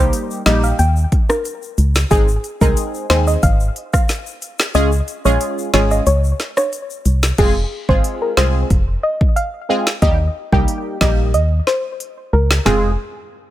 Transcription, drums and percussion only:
0.13 closed hi-hat loud
0.13 shaker medium
0.31 shaker medium
0.46 snare loud
0.46 closed hi-hat medium
0.64 shaker medium
0.79 closed hi-hat medium
0.79 shaker medium
0.96 shaker soft
1.12 kick medium
1.12 closed hi-hat medium
1.30 cross-stick loud
1.30 high timbale medium
1.30 shaker medium
1.45 closed hi-hat medium
1.45 shaker medium
1.62 shaker soft
1.78 closed hi-hat medium
1.78 shaker medium
1.95 snare loud
1.95 shaker medium
2.11 kick loud
2.11 closed hi-hat medium
2.11 shaker medium
2.28 shaker medium
2.44 closed hi-hat medium
2.44 shaker medium
2.61 kick medium
2.61 shaker medium
2.77 closed hi-hat medium
2.77 shaker medium
2.94 shaker medium
3.10 snare loud
3.10 closed hi-hat medium
3.27 shaker medium
3.43 kick medium
3.43 closed hi-hat medium
3.43 shaker medium
3.60 shaker soft
3.76 closed hi-hat medium
3.94 kick medium
3.94 cross-stick loud
3.94 shaker medium
4.09 snare medium
4.09 closed hi-hat medium
4.09 shaker medium
4.26 shaker medium
4.42 closed hi-hat medium
4.42 shaker medium
4.59 snare loud
4.59 shaker medium
4.75 closed hi-hat medium
4.75 shaker medium
4.92 shaker medium
5.08 closed hi-hat soft
5.08 shaker medium
5.25 shaker medium
5.41 closed hi-hat medium
5.41 shaker medium
5.58 shaker medium
5.74 snare loud
5.74 closed hi-hat soft
5.91 shaker medium
6.07 closed hi-hat medium
6.07 shaker medium
6.24 shaker soft
6.40 snare medium
6.40 closed hi-hat medium
6.57 cross-stick loud
6.57 high timbale medium
6.57 shaker medium
6.73 closed hi-hat medium
6.73 shaker medium
6.90 shaker soft
7.05 closed hi-hat medium
7.05 shaker medium
7.23 snare loud
7.23 shaker medium
7.38 kick loud
7.38 closed hi-hat medium
7.38 crash medium
7.89 kick medium
8.04 closed hi-hat medium
8.37 snare loud
8.70 kick medium
8.70 closed hi-hat medium
9.21 kick medium
9.37 closed hi-hat medium
9.87 snare loud
10.02 kick loud
10.02 closed hi-hat medium
10.53 kick medium
10.68 closed hi-hat medium
11.01 kick medium
11.01 snare loud
11.34 closed hi-hat medium
11.67 snare medium
12.00 closed hi-hat medium
12.51 snare loud
12.66 snare loud
12.66 floor tom loud

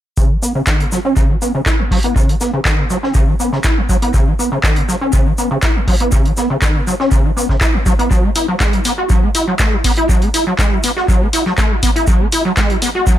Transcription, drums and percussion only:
0.17 kick loud
0.17 shaker medium
0.43 shaker medium
0.67 kick loud
0.67 snare loud
0.67 clap loud
0.67 shaker medium
0.80 closed hi-hat soft
0.92 snare soft
0.92 shaker medium
1.17 kick loud
1.17 shaker medium
1.42 shaker medium
1.66 kick loud
1.66 snare loud
1.66 clap loud
1.66 shaker medium
1.91 kick medium
1.91 open hi-hat medium
2.03 closed hi-hat soft
2.16 kick loud
2.16 shaker medium
2.29 closed hi-hat soft
2.41 snare soft
2.41 shaker medium
2.65 kick loud
2.65 snare loud
2.65 clap loud
2.65 shaker medium
2.90 shaker medium
3.03 snare soft
3.14 kick loud
3.14 shaker medium
3.40 shaker medium
3.52 snare soft
3.64 kick loud
3.64 snare loud
3.64 clap loud
3.64 shaker medium
3.89 kick medium
3.89 shaker medium
4.02 closed hi-hat soft
4.14 kick loud
4.14 shaker medium
4.40 shaker medium
4.63 kick loud
4.63 snare loud
4.63 clap loud
4.63 shaker medium
4.76 closed hi-hat soft
4.89 snare soft
4.89 shaker medium
5.13 kick loud
5.13 shaker medium
5.38 shaker medium
5.62 kick loud
5.62 snare loud
5.62 clap loud
5.62 shaker medium
5.88 kick medium
5.88 open hi-hat medium
6.00 closed hi-hat soft
6.12 kick loud
6.12 shaker medium
6.25 closed hi-hat soft
6.37 snare soft
6.37 shaker medium
6.62 kick loud
6.62 snare loud
6.62 clap loud
6.62 shaker medium
6.87 shaker medium
7.00 snare soft
7.12 kick loud
7.12 shaker medium
7.38 shaker medium
7.49 kick medium
7.49 snare soft
7.61 kick loud
7.61 snare loud
7.61 clap loud
7.61 shaker medium
7.86 kick medium
7.86 shaker medium
7.99 closed hi-hat soft
8.11 kick loud
8.11 shaker medium
8.36 open hi-hat loud
8.36 shaker medium
8.60 kick loud
8.60 snare loud
8.60 clap loud
8.60 shaker medium
8.73 closed hi-hat soft
8.85 snare soft
8.85 open hi-hat loud
8.85 shaker medium
9.10 kick loud
9.10 shaker medium
9.35 open hi-hat medium
9.35 shaker medium
9.59 kick loud
9.59 snare loud
9.59 clap loud
9.59 shaker medium
9.84 kick medium
9.84 open hi-hat loud
9.84 open hi-hat medium
9.97 closed hi-hat soft
10.09 kick loud
10.09 shaker medium
10.22 closed hi-hat soft
10.34 snare soft
10.34 open hi-hat loud
10.34 shaker medium
10.59 kick loud
10.59 snare loud
10.59 clap loud
10.59 shaker medium
10.83 open hi-hat loud
10.83 shaker medium
10.97 snare soft
11.08 kick loud
11.08 shaker medium
11.33 open hi-hat medium
11.33 shaker medium
11.46 snare soft
11.58 kick loud
11.58 snare loud
11.58 clap loud
11.58 shaker medium
11.83 kick medium
11.83 open hi-hat loud
11.83 shaker medium
11.96 closed hi-hat soft
12.07 kick loud
12.07 shaker medium
12.32 open hi-hat loud
12.32 shaker medium
12.57 kick loud
12.57 snare loud
12.57 clap loud
12.57 shaker medium
12.70 closed hi-hat soft
12.82 snare soft
12.82 open hi-hat loud
12.82 shaker medium
13.07 kick loud
13.07 shaker medium

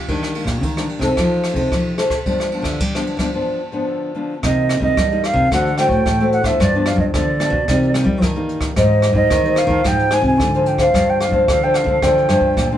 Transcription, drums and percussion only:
0.08 kick medium
0.08 ride soft
0.23 cross-stick medium
0.35 ride soft
0.47 kick medium
0.47 cross-stick medium
0.47 ride soft
0.63 kick medium
0.63 ride soft
0.77 cross-stick medium
0.89 ride soft
1.01 kick medium
1.01 cross-stick medium
1.01 ride soft
1.17 kick medium
1.17 cross-stick medium
1.17 ride soft
1.44 cross-stick medium
1.44 ride soft
1.56 kick medium
1.56 ride soft
1.72 kick medium
1.72 cross-stick soft
1.72 ride soft
1.98 cross-stick medium
1.98 ride soft
2.10 kick medium
2.10 cross-stick medium
2.10 ride soft
2.26 kick medium
2.26 ride soft
2.40 cross-stick medium
2.52 ride soft
2.64 kick medium
2.64 cross-stick medium
2.64 ride soft
2.80 kick medium
2.80 ride soft
2.95 cross-stick medium
3.07 ride soft
3.19 kick medium
3.19 cross-stick medium
3.19 ride soft
4.43 kick medium
4.43 cross-stick medium
4.43 closed hi-hat medium
4.69 cross-stick medium
4.69 closed hi-hat soft
4.82 kick medium
4.97 kick medium
4.97 cross-stick medium
4.97 closed hi-hat medium
5.12 closed hi-hat soft
5.24 cross-stick medium
5.24 closed hi-hat soft
5.36 kick medium
5.36 closed hi-hat soft
5.52 kick medium
5.52 cross-stick medium
5.52 closed hi-hat medium
5.67 closed hi-hat soft
5.78 cross-stick medium
5.78 closed hi-hat soft
5.90 kick medium
5.90 closed hi-hat soft
6.06 kick medium
6.06 cross-stick medium
6.06 closed hi-hat medium
6.20 closed hi-hat soft
6.32 closed hi-hat soft
6.44 kick medium
6.44 cross-stick medium
6.44 closed hi-hat soft
6.60 kick medium
6.60 cross-stick medium
6.60 closed hi-hat medium
6.86 cross-stick medium
6.86 closed hi-hat soft
6.98 kick medium
7.14 kick medium
7.14 cross-stick medium
7.14 closed hi-hat medium
7.40 cross-stick medium
7.40 closed hi-hat soft
7.52 kick medium
7.68 kick medium
7.68 cross-stick medium
7.68 closed hi-hat medium
7.83 closed hi-hat soft
7.94 cross-stick medium
7.94 closed hi-hat soft
8.07 kick medium
8.22 kick medium
8.22 cross-stick medium
8.22 closed hi-hat medium
8.49 closed hi-hat soft
8.61 kick medium
8.61 cross-stick medium
8.61 closed hi-hat soft
8.76 kick medium
8.76 cross-stick medium
8.76 closed hi-hat medium
9.02 cross-stick medium
9.02 closed hi-hat soft
9.15 kick medium
9.30 kick medium
9.30 cross-stick medium
9.30 closed hi-hat medium
9.45 closed hi-hat soft
9.56 cross-stick medium
9.56 closed hi-hat soft
9.68 kick medium
9.68 closed hi-hat soft
9.84 kick medium
9.84 cross-stick medium
9.84 closed hi-hat medium
9.99 closed hi-hat soft
10.11 cross-stick medium
10.11 closed hi-hat soft
10.24 kick medium
10.24 closed hi-hat soft
10.40 kick medium
10.40 cross-stick medium
10.40 closed hi-hat medium
10.54 closed hi-hat soft
10.66 closed hi-hat soft
10.78 kick medium
10.78 cross-stick medium
10.78 closed hi-hat soft
10.94 kick medium
10.94 cross-stick medium
10.94 closed hi-hat medium
11.21 cross-stick medium
11.21 closed hi-hat soft
11.32 kick medium
11.48 kick medium
11.48 cross-stick medium
11.48 closed hi-hat medium
11.74 cross-stick medium
11.74 closed hi-hat soft
11.87 kick medium
12.02 kick medium
12.02 cross-stick medium
12.02 closed hi-hat medium
12.18 closed hi-hat soft
12.29 cross-stick medium
12.29 closed hi-hat soft
12.41 kick medium
12.57 kick medium
12.57 cross-stick medium
12.57 closed hi-hat medium

